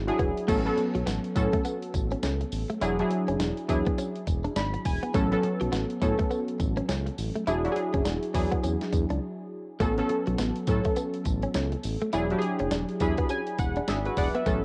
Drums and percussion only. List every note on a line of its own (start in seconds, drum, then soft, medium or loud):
0.08 closed hi-hat soft
0.19 kick medium
0.19 closed hi-hat medium
0.37 closed hi-hat medium
0.48 kick loud
0.48 closed hi-hat medium
0.48 crash loud
0.48 tambourine medium
0.66 closed hi-hat soft
0.78 closed hi-hat medium
0.95 closed hi-hat medium
1.07 snare loud
1.07 closed hi-hat medium
1.07 tambourine medium
1.24 closed hi-hat medium
1.36 kick medium
1.36 closed hi-hat medium
1.36 tambourine medium
1.53 kick medium
1.53 closed hi-hat medium
1.65 closed hi-hat medium
1.65 tambourine medium
1.82 closed hi-hat medium
1.94 kick medium
1.94 closed hi-hat medium
1.94 tambourine medium
2.11 closed hi-hat soft
2.23 snare loud
2.23 closed hi-hat medium
2.23 tambourine medium
2.41 closed hi-hat medium
2.52 open hi-hat medium
2.52 tambourine medium
2.70 closed hi-hat medium
2.81 closed hi-hat medium
2.81 tambourine medium
2.99 closed hi-hat medium
3.10 closed hi-hat medium
3.28 closed hi-hat medium
3.40 snare loud
3.40 closed hi-hat medium
3.40 tambourine medium
3.57 closed hi-hat medium
3.69 kick medium
3.69 closed hi-hat medium
3.69 tambourine medium
3.86 kick medium
3.86 closed hi-hat medium
3.98 closed hi-hat medium
3.98 tambourine medium
4.15 closed hi-hat medium
4.27 kick medium
4.27 closed hi-hat medium
4.27 tambourine medium
4.45 closed hi-hat soft
4.56 snare loud
4.56 closed hi-hat medium
4.56 tambourine medium
4.74 closed hi-hat soft
4.85 kick loud
4.85 open hi-hat medium
4.85 tambourine medium
5.03 closed hi-hat medium
5.14 kick loud
5.14 closed hi-hat medium
5.14 tambourine medium
5.32 closed hi-hat soft
5.43 closed hi-hat medium
5.61 closed hi-hat medium
5.73 snare loud
5.73 closed hi-hat medium
5.73 tambourine medium
5.90 closed hi-hat medium
6.02 kick medium
6.02 closed hi-hat medium
6.02 tambourine medium
6.19 kick medium
6.19 closed hi-hat medium
6.31 closed hi-hat medium
6.31 tambourine medium
6.48 closed hi-hat medium
6.60 kick loud
6.60 closed hi-hat medium
6.60 tambourine medium
6.77 closed hi-hat soft
6.89 snare loud
6.89 closed hi-hat medium
6.89 tambourine medium
7.07 closed hi-hat medium
7.18 open hi-hat medium
7.18 tambourine medium
7.36 closed hi-hat medium
7.47 closed hi-hat medium
7.47 tambourine medium
7.65 closed hi-hat soft
7.76 closed hi-hat medium
7.94 kick medium
7.94 closed hi-hat medium
8.05 snare loud
8.05 closed hi-hat medium
8.05 tambourine medium
8.23 closed hi-hat medium
8.34 kick medium
8.34 open hi-hat medium
8.34 tambourine medium
8.52 kick medium
8.52 closed hi-hat medium
8.63 closed hi-hat medium
8.63 tambourine medium
8.81 snare medium
8.81 closed hi-hat medium
8.93 kick medium
8.93 closed hi-hat medium
8.93 tambourine medium
9.10 closed hi-hat soft
9.80 kick loud
9.80 closed hi-hat medium
9.80 tambourine medium
9.98 closed hi-hat medium
10.09 closed hi-hat medium
10.27 closed hi-hat medium
10.38 snare loud
10.38 closed hi-hat medium
10.38 tambourine medium
10.56 closed hi-hat medium
10.67 kick medium
10.67 closed hi-hat medium
10.67 tambourine medium
10.85 kick loud
10.85 closed hi-hat medium
10.96 closed hi-hat medium
10.96 tambourine medium
11.14 closed hi-hat medium
11.25 kick loud
11.25 closed hi-hat medium
11.25 tambourine medium
11.43 closed hi-hat soft
11.54 snare loud
11.54 closed hi-hat medium
11.54 tambourine medium
11.72 closed hi-hat soft
11.83 open hi-hat medium
11.83 tambourine medium
12.01 closed hi-hat medium
12.13 closed hi-hat medium
12.13 tambourine medium
12.30 closed hi-hat soft
12.42 closed hi-hat medium
12.59 closed hi-hat medium
12.71 snare loud
12.71 closed hi-hat medium
12.71 tambourine medium
12.89 closed hi-hat medium
13.00 kick loud
13.00 closed hi-hat medium
13.00 tambourine medium
13.18 kick loud
13.18 closed hi-hat medium
13.29 closed hi-hat medium
13.29 tambourine medium
13.47 closed hi-hat medium
13.58 kick loud
13.58 closed hi-hat medium
13.58 tambourine medium
13.76 closed hi-hat soft
13.88 snare loud
13.88 closed hi-hat medium
13.88 tambourine medium
14.05 closed hi-hat medium
14.17 kick loud
14.17 open hi-hat medium
14.17 tambourine medium
14.35 closed hi-hat medium
14.46 kick loud
14.46 closed hi-hat medium
14.46 tambourine medium